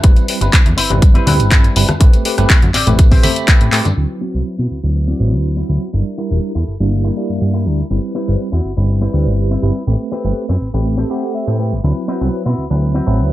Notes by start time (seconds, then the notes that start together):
0.03 G1 G3 C4 E4 B4, muted clean electric guitar stroke, kick, closed hi-hat
0.16 muted clean electric guitar stroke, closed hi-hat, tambourine
0.28 G3 C4 E4 B4, muted clean electric guitar stroke, open hi-hat
0.41 G1 G3 C4 E4 B4, closed hi-hat, tambourine
0.53 kick, clap, closed hi-hat
0.66 E2, closed hi-hat, tambourine, high conga
0.77 G1 C4 E4 B4, open hi-hat
0.90 G1 G3 C4 E4 B4, closed hi-hat, tambourine, low conga
1.01 muted clean electric guitar stroke, kick, closed hi-hat, tambourine
1.14 C4 E4 B4, closed hi-hat, tambourine
1.27 D2 G3 C4 E4 B4, open hi-hat, high conga, low conga
1.39 G1, closed hi-hat, tambourine
1.50 C4 E4 A4, kick, clap, closed hi-hat
1.64 closed hi-hat, tambourine
1.75 G1 G3 C4 E4 B4, muted clean electric guitar stroke, open hi-hat
1.88 muted clean electric guitar stroke, cross-stick, closed hi-hat, tambourine, high conga
2.00 A1 A3 C4 G4 B4, muted clean electric guitar stroke, kick, closed hi-hat
2.13 muted clean electric guitar stroke, closed hi-hat, tambourine
2.25 A3 C4 G4 B4, muted clean electric guitar stroke, open hi-hat
2.38 G1 A3 C4 G4 B4, cross-stick, closed hi-hat, tambourine
2.50 kick, clap, closed hi-hat
2.62 F#2, closed hi-hat, tambourine, high conga
2.74 A1 C4 G4 D5, clap, open hi-hat
2.87 A1 A3 C4 G4 B4, closed hi-hat, tambourine, low conga
2.98 muted clean electric guitar stroke, kick, closed hi-hat, tambourine
3.11 C4 G4 C5, kick, open hi-hat, tambourine
3.23 A3 C4 G4 B5, open hi-hat, high conga
3.36 closed hi-hat, tambourine
3.47 C4 G4 B4, kick, clap, closed hi-hat
3.61 A1, closed hi-hat, tambourine
3.72 A2 A3 C4 G4 B4, muted clean electric guitar stroke, clap, open hi-hat
3.85 G2, muted clean electric guitar stroke, closed hi-hat, tambourine, high conga
3.96 D2 F#3 C4 E4 B4
4.21 F#3 C4 E4 F#4 B4
4.34 C2 F#3 C4 E4 B4
4.58 B2 C4 E4 F#4 B4
4.71 D2
4.83 D2 F#3 C4 E4 B4
4.95 muted clean electric guitar stroke
5.08 C4 E4 F#4 D5
5.19 A1 F#3 C4 E4 B4
5.33 D2
5.57 C4 E4 F#4 B4
5.69 D2 F#3 C4 E4 B4
5.93 G1 G3 D4 E4 A#4
6.18 G3 D4 E4 G4 A#4
6.31 E1 G3 D4 E4 A#4
6.55 E2 E4 G4 A4
6.68 G1
6.80 G1 G3 A#3 D4 E4
6.91 muted clean electric guitar stroke
7.04 E4 G4 A#4
7.17 G3 A#3 D4 E4
7.29 G2
7.42 G2
7.53 E4 G4 A#4
7.66 D2 G3 D4 E4 A#4
7.90 G1 G3 C4 E4 B4
8.15 G3 C4 E4 B4
8.27 G1 G3 C4 E4 B4
8.52 E2 C4 E4 F#4
8.65 G1
8.77 G1 G3 C4 E4 B4
8.88 muted clean electric guitar stroke
9.01 C4 E4 B4
9.13 D2 G3 C4 E4 B4
9.26 G1
9.51 C4 E4 B4
9.62 G1 G3 C4 E4 B4
9.87 A1 A3 C4 G4 B4
10.12 A3 C4 G4 B4
10.25 G1 A3 C4 G4 B4
10.49 F#2 C4 G4 B4
10.61 A1
10.74 A1 A3 C4 G4 B4
10.85 muted clean electric guitar stroke
10.98 C4 G4 A4
11.10 A3 C4 G4 F#5 B5
11.35 E5
11.47 A2 C4 G4 B4
11.59 A3 C4 G4 B4
11.72 G1
11.84 D2 F#3 C4 E4 B4
12.08 F#3 C4 E4 F#4 B4
12.21 C2 F#3 C4 E4 B4
12.45 B2 C4 E4 F#4 B4
12.58 D2
12.70 D2 F#3 C4 E4 B4
12.82 muted clean electric guitar stroke
12.94 C4 E4 F#4 B4
13.07 A1 F#3 C4 E4 B4
13.20 D2